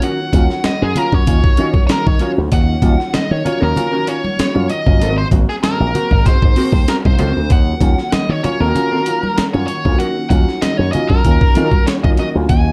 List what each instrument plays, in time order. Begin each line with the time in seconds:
Already playing: string machine D#3 A#3 C#4 F#4
0.02 upright piano D#3, hollow-body jazz guitar C#4 F#4 A#4, lead electric guitar F#5, closed hi-hat, muted conga
0.20 upright piano C#4 F4
0.33 slap bass D#2, upright piano F#3 C#4 F4, kick, closed hi-hat, high conga
0.50 snare
0.64 upright piano D#3, lead electric guitar D#5, snare, closed hi-hat, muted conga, high conga
0.82 slap bass F#2, lead electric guitar G#4
0.95 upright piano F#3 C#4 F4, lead electric guitar A#4, closed hi-hat, low conga
1.12 slap bass F#2, lead electric guitar C#5, kick
1.27 slap bass D#2, upright piano C#4 F4, kick, closed hi-hat, muted conga, low conga
1.43 upright piano D#3, kick
1.57 slap bass D#3, hollow-body jazz guitar C#4 F#4 A#4, upright piano C#4 F4, closed hi-hat, muted conga
1.74 kick, high conga
1.87 upright piano D#3, lead electric guitar C#5, snare, closed hi-hat, high conga
1.91 lead electric guitar A#4
2.07 slap bass D#3, lead electric guitar C#5, kick, high conga
2.19 upright piano F#3 C#4 F4, hollow-body jazz guitar C#4 F#4 A#4, lead electric guitar C#5, closed hi-hat
2.37 slap bass D2, upright piano C#4 F4
2.52 slap bass D#2, upright piano D#3, lead electric guitar F#5, kick, closed hi-hat
2.68 upright piano C#4 F4
2.82 slap bass D#2, upright piano F#3 C#4 F4, kick, closed hi-hat, muted conga, high conga
3.00 snare
3.14 upright piano D#3, lead electric guitar D#5, muted slap bass stroke, snare, closed hi-hat, muted conga, high conga
3.31 slap bass D#3, lead electric guitar C#5
3.45 upright piano F#3 C#4 F4, lead electric guitar C#5, closed hi-hat, low conga
3.60 slap bass D#2, hollow-body jazz guitar C#4 F#4 A#4, upright piano C#4 F4, lead electric guitar A#4
3.75 hollow-body jazz guitar C#4 F#4 A#4, upright piano C#4 F4, closed hi-hat, muted conga, low conga
3.92 upright piano D#3, hollow-body jazz guitar C#4 F#4 A#4
4.07 upright piano C#4 F4, lead electric guitar C#5, closed hi-hat
4.24 high conga
4.39 muted slap bass stroke, snare, closed hi-hat, muted conga, high conga
4.54 slap bass F#2, upright piano F#3 C#4 F4, high conga
4.70 upright piano D#3, lead electric guitar D#5, closed hi-hat, muted conga
4.86 slap bass G1, upright piano F#3 C#4 F4, kick
5.01 slap bass G#1, upright piano G#2 D#3, string machine F#3 C4 G#4, hollow-body jazz guitar C4 F#4 A#4, closed hi-hat, muted conga
5.18 upright piano C4 F#4, lead electric guitar C5
5.31 slap bass G#1, upright piano A#3 C4 F#4, kick, closed hi-hat, muted conga, high conga
5.49 lead electric guitar G#4, snare
5.63 upright piano G#2 D#3, lead electric guitar A#4, snare, closed hi-hat, muted conga, high conga
5.80 slap bass A#1
5.94 upright piano A#3 C4 F#4, closed hi-hat, low conga
6.11 slap bass G#1, kick
6.25 slap bass G#2, upright piano C4 F#4, lead electric guitar C5, kick, snare, closed hi-hat, muted conga, low conga
6.42 upright piano G#2 D#3, slap bass G#2, kick
6.56 hollow-body jazz guitar C4 F#4 A#4, upright piano C4 F#4, open hi-hat
6.72 slap bass D#2, kick, high conga
6.88 upright piano C4 F#4, lead electric guitar A#4, snare, closed hi-hat, high conga
7.05 slap bass C2, upright piano G#2 D#3, lead electric guitar C5, kick, high conga
7.18 slap bass C#2, upright piano C4 F#4, hollow-body jazz guitar C4 F#4 A#4, lead electric guitar C5, closed hi-hat, muted conga, low conga
7.37 slap bass D2
7.50 slap bass D#2, string machine D#3 C#4 F#4, upright piano D#3, lead electric guitar F#5, kick, closed hi-hat, muted conga
7.67 upright piano C#4 F4
7.81 slap bass D#2, upright piano F#3 C#4 F4, kick, closed hi-hat, muted conga, high conga
7.99 snare
8.12 upright piano D#3, lead electric guitar D#5, muted slap bass stroke, snare, closed hi-hat, muted conga, high conga
8.29 slap bass D#3, lead electric guitar C#5
8.43 upright piano F#3 C#4 F4, lead electric guitar C#5, closed hi-hat, muted conga, low conga
8.60 slap bass D#2, upright piano C#4 F4, hollow-body jazz guitar C#4 F#4 A#4, lead electric guitar A#4
8.75 upright piano C#4 F4, hollow-body jazz guitar C#4 F#4 A#4, closed hi-hat, muted conga, low conga
8.91 upright piano D#3, hollow-body jazz guitar C#4 F#4 A#4
9.06 upright piano C#4 F4, closed hi-hat
9.23 high conga
9.37 lead electric guitar A#4, muted slap bass stroke, snare, closed hi-hat, muted conga, high conga
9.53 slap bass F#2, upright piano F#3 C#4 F4, lead electric guitar C#5, high conga
9.67 upright piano D#3, lead electric guitar C#5, closed hi-hat, muted conga
9.85 slap bass D2, upright piano F#3 C#4 F4, kick
9.99 upright piano D#3, hollow-body jazz guitar C#4 F#4 A#4, lead electric guitar F#5, closed hi-hat
10.17 upright piano C#4 F4
10.30 slap bass D#2, upright piano F#3 C#4 F4, lead electric guitar F#5, kick, closed hi-hat, muted conga, high conga
10.49 snare
10.61 upright piano D#3, lead electric guitar D#5, snare, closed hi-hat, high conga
10.77 slap bass F#2, lead electric guitar C#5
10.92 upright piano F#3 C#4 F4, lead electric guitar D#5, closed hi-hat, muted conga, low conga
11.08 slap bass F#2, lead electric guitar A#4, kick
11.24 slap bass D#2, upright piano C#4 F4, kick, closed hi-hat, muted conga, low conga
11.41 upright piano D#3, kick
11.55 slap bass D#3, hollow-body jazz guitar C#4 F#4 A#4, upright piano C#4 F4, closed hi-hat
11.71 kick, high conga
11.86 lead electric guitar C#5, snare, closed hi-hat, high conga
12.03 slap bass D#3, upright piano F#3 C#4 F4, lead electric guitar D#5, kick, high conga
12.17 upright piano D#3, hollow-body jazz guitar C#4 F#4 A#4, lead electric guitar D#5, closed hi-hat
12.35 slap bass D2, upright piano F#3 C#4 F4
12.49 slap bass D#2, lead electric guitar G#5, kick, closed hi-hat